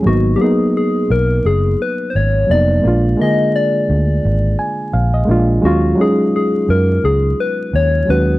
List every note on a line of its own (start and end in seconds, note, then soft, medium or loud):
0.02 0.35 G#1 medium
0.02 0.33 F#3 medium
0.02 0.34 A#3 medium
0.07 0.35 B3 medium
0.07 0.36 D#4 medium
0.07 0.33 F#4 medium
0.36 1.51 F#3 medium
0.36 1.52 A#3 medium
0.36 0.43 G4 medium
0.41 1.53 B3 medium
0.41 1.54 D#4 medium
0.41 0.76 G#4 medium
0.77 1.13 G#4 medium
1.10 1.39 B1 medium
1.10 1.48 A#4 medium
1.45 1.74 F#1 medium
1.45 1.83 G#4 medium
1.82 2.12 B4 loud
2.10 2.18 C5 medium
2.15 2.44 G#1 medium
2.15 2.53 C#5 medium
2.47 2.79 F1 medium
2.47 2.77 F#3 medium
2.47 2.78 A#3 medium
2.51 2.79 B3 medium
2.51 2.80 D#4 medium
2.51 3.20 D5 loud
2.81 3.14 A#1 loud
2.81 3.12 G#3 medium
2.81 3.13 A#3 medium
2.85 3.14 D4 medium
2.85 3.15 F4 medium
3.17 4.32 D3 medium
3.17 4.30 G#3 medium
3.17 4.31 A#3 medium
3.21 4.33 G#4 medium
3.21 3.53 D#5 loud
3.56 4.91 D5 loud
3.90 4.18 D2 medium
4.25 4.54 G#1 medium
4.59 4.91 G#5 medium
4.93 5.23 A#1 medium
4.93 5.12 F5 medium
5.14 5.60 D#5 medium
5.25 5.58 A#1 medium
5.25 5.56 G#3 medium
5.25 5.57 A#3 medium
5.29 5.58 D4 medium
5.29 5.59 F4 medium
5.60 5.93 D#2 loud
5.60 5.91 F#3 medium
5.60 5.92 G#3 medium
5.64 5.93 C#4 medium
5.64 5.94 F4 medium
5.64 6.03 F#4 medium
5.95 7.09 F#3 medium
5.95 7.10 G#3 medium
5.99 7.11 C#4 medium
5.99 7.12 D#4 medium
5.99 6.35 G#4 loud
6.36 6.72 G#4 medium
6.69 6.98 F#2 medium
6.69 7.06 A#4 medium
7.04 7.33 C#2 medium
7.04 7.42 G#4 medium
7.40 7.77 B4 loud
7.73 8.02 D#2 medium
7.73 8.12 C#5 loud
8.05 8.37 D#2 medium
8.05 8.35 F#3 medium
8.05 8.36 G#3 medium
8.05 8.37 C#4 medium
8.10 8.38 F#4 medium
8.10 8.39 B4 loud